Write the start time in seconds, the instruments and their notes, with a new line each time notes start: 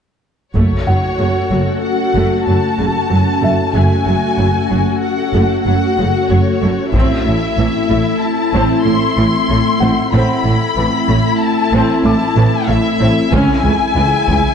0.55 double bass section F#1, cello section F#2, ambient pad A3 C#4 F#4 A4, viola section A3 F#4, violin section C#5, taiko
0.87 double bass section F#1, cello section F#2, viola section F#3, felt piano F#5
1.19 double bass section F#1, cello section F#2, viola section C#3
1.51 double bass section F#1, cello section F#2, viola section F#3
1.83 violin section F#5
2.15 double bass section F#1, cello section F#2, viola section A3
2.47 double bass section F#1, cello section F#2, viola section F#3, violin section A5
2.79 double bass section F#1, cello section F#2, viola section C#3
3.10 double bass section F#1, cello section F#2, viola section F#3
3.42 double bass section F#1, cello section F#2, viola section A3, felt piano E5
3.74 double bass section F#1, cello section F#2, ambient pad A3 C#4 F#4 A4, viola section A3 F#4, violin section G#5
4.06 double bass section F#1, cello section F#2, viola section F#3
4.38 double bass section F#1, cello section F#2, viola section C#3
4.70 double bass section F#1, cello section F#2, viola section F#3
5.02 violin section F#5
5.34 double bass section F#1, cello section F#2, viola section A3
5.66 double bass section F#1, cello section F#2, viola section F#3, violin section F#5
5.97 double bass section F#1, cello section F#2, viola section C#3
6.29 double bass section F#1, cello section F#2, viola section F#3, violin section C#5
6.62 double bass section F#1, cello section F#2, viola section A3
6.93 double bass section A1, cello section A2, ambient pad A3 C4 E4 A4, viola section C4 E4, violin section E5, taiko
7.26 double bass section A1, cello section A2, viola section A3
7.58 double bass section A1, cello section A2, viola section E3
7.89 double bass section A1, cello section A2, viola section A3
8.20 violin section A5
8.53 double bass section A1, cello section A2, viola section C4
8.85 double bass section A1, cello section A2, viola section A3, violin section C6
9.17 double bass section A1, cello section A2, viola section E3
9.49 double bass section A1, cello section A2, viola section A3
9.80 double bass section A1, cello section A2, viola section C4, felt piano F#5
10.13 double bass section A1, cello section A2, ambient pad A3 C4 E4 A4, viola section C4 E4, violin section B5
10.45 double bass section A1, cello section A2, viola section A3
10.77 double bass section A1, cello section A2, viola section E3
11.09 double bass section A1, cello section A2, viola section A3
11.40 violin section A5
11.72 double bass section A1, cello section A2, viola section C4
12.04 double bass section A1, cello section A2, viola section A3, violin section A5, felt piano D6
12.36 double bass section A1, cello section A2, viola section E3
12.68 double bass section A1, cello section A2, viola section A3, violin section E5
13.00 double bass section A1, cello section A2, viola section C4
13.32 double bass section C#2, cello section C#2, ambient pad E3 C#4 E4 G#4, viola section C#4 E4, violin section G#5, taiko
13.64 double bass section C#2, cello section C#2, viola section G#3
13.96 double bass section C#2, cello section C#2, viola section E3
14.28 double bass section C#2, cello section C#2, viola section G#3, taiko